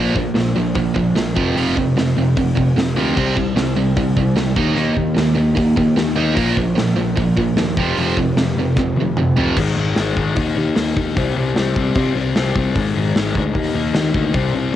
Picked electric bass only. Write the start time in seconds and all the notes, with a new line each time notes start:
Already playing: A#1
0.15 A#1
0.36 A#1
0.56 A#1
0.76 A#1
0.96 A#1
1.16 A#1
1.37 F1
1.57 F1
1.77 F1
1.96 F1
2.17 F1
2.37 F1
2.58 F1
2.76 F1
2.96 D2
3.17 C2
3.37 C2
3.57 C2
3.76 C2
3.97 C2
4.17 C2
4.37 C2
4.57 D#2
4.77 D#2
4.97 D#2
5.17 D#2
5.37 D#2
5.58 D#2
5.77 D#2
5.97 D#2
6.17 D#2
6.37 A#1
6.58 A#1
6.77 A#1
6.97 A#1
7.17 A#1
7.37 A#1
7.56 D#2
7.77 F1
7.96 F1
8.17 F1
8.36 F1
8.55 F1
8.77 F1
8.96 F1
9.16 F1
9.36 F1
9.57 G#1
9.77 G#1
9.96 G#1
10.17 G#1
10.37 D#2
10.57 D#2
10.76 D#2
10.97 D#2
11.17 C2
11.36 C2
11.56 C2
11.76 C2
11.96 C3
12.16 C2
12.36 C2
12.56 C2
12.76 G#1
12.96 G#1
13.15 G#1
13.35 D2
13.55 D#2
13.74 D#2
13.94 D#2
14.14 D2
14.35 C2
14.55 C2